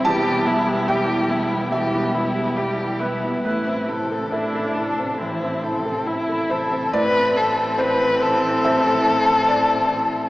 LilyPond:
<<
  \new Staff \with { instrumentName = "Felt piano" } { \time 4/4 \key a \minor \tempo 4 = 70 << { a''4 g''4 e''4. b'8 | b'4 a'2 r8 c''8 | d''4 c''4 e''4 d''4 | } \\ { e,16 b16 e'16 g'16 e''16 g'16 e'16 b16 b,16 b16 e'16 g'16 e''16 g'16 e'16 b16 | a,16 c'16 e'16 a'16 e''16 a'16 e'16 c'16 e16 c'16 e'16 a'16 e''16 a'16 e'16 c'16 | a,2 <c' e' a'>2 | } >> }
  \new Staff \with { instrumentName = "Violin" } { \time 4/4 \key a \minor g'8 e'8 g'8 e'8 g'8 e'8 g'8 e'8 | e'8 a'8 e'8 a'8 e'8 a'8 e'8 a'8 | b'8 a'8 b'8 a'2~ a'8 | }
  \new Staff \with { instrumentName = "Viola" } { \time 4/4 \key a \minor g8 b8 g8 b8 g8 b8 g8 b8 | a8 c'8 d'4 c'4 e'4 | c'1 | }
  \new Staff \with { instrumentName = "Cello" } { \clef bass \time 4/4 \key a \minor e8 g8 e8 g8 e8 g8 e8 g8 | e8 c8 e8 c8 e8 c8 e8 c8 | e1 | }
  \new Staff \with { instrumentName = "Double bass" } { \clef bass \time 4/4 \key a \minor e,,1 | a,,1 | a,,1 | }
>>